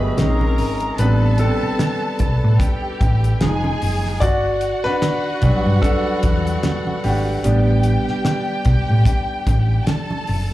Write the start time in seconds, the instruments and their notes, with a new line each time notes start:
Already playing: grand piano F#3 A3 B3 F#4 G4 G#4 D5 D#5 E5, violin section B4 B5
0.17 fingered electric bass A#1, grand piano G#3 C4 C#4 D#4, violin section A#4 A#5, snare, closed hi-hat, high conga
0.41 high conga
0.58 fingered electric bass G#1, open hi-hat, high conga
0.80 closed hi-hat
0.98 fingered electric bass A1, grand piano G3 B3 C4 D4 B4, violin section A4 A5, closed hi-hat
1.38 grand piano C4 A4, closed hi-hat, muted conga
1.63 muted fingered electric bass stroke
1.79 snare, closed hi-hat, high conga
2.19 fingered electric bass B1, kick, closed hi-hat, low conga
2.44 fingered electric bass A2
2.60 violin section G4 G5, kick, closed hi-hat, muted conga
3.01 fingered electric bass A1, kick, closed hi-hat, muted conga
3.24 closed hi-hat
3.39 fingered electric bass F1, grand piano F3 G#3 D#4, violin section G#4 G#5, snare, closed hi-hat, high conga
3.64 high conga
3.82 fingered electric bass F#1, open hi-hat, high conga
4.06 snare
4.20 fingered electric bass G1, violin section F#4 F#5, grand piano F#4 D5, kick, closed hi-hat
4.61 closed hi-hat
4.84 grand piano D4 B4, muted fingered electric bass stroke, snare
5.02 snare, closed hi-hat, high conga
5.42 fingered electric bass B1, grand piano F#3 G3 D4, kick, closed hi-hat, low conga
5.66 fingered electric bass G2
5.82 grand piano D4 A4, kick, closed hi-hat, muted conga
6.23 fingered electric bass E2, kick, closed hi-hat, muted conga
6.47 closed hi-hat
6.63 snare, closed hi-hat, high conga
6.87 high conga
7.04 fingered electric bass G#1, grand piano D4 G4, open hi-hat, high conga
7.44 fingered electric bass A1, grand piano G3 B3 D4, violin section G4 G5, closed hi-hat
7.83 closed hi-hat
8.08 muted fingered electric bass stroke, snare
8.25 snare, closed hi-hat, high conga
8.65 fingered electric bass B1, kick, closed hi-hat, low conga
8.90 fingered electric bass A2
9.05 kick, closed hi-hat, muted conga
9.47 fingered electric bass A1, kick, closed hi-hat, muted conga
9.86 violin section A4 A5, snare, closed hi-hat, high conga
10.11 high conga
10.27 fingered electric bass F#1, open hi-hat, high conga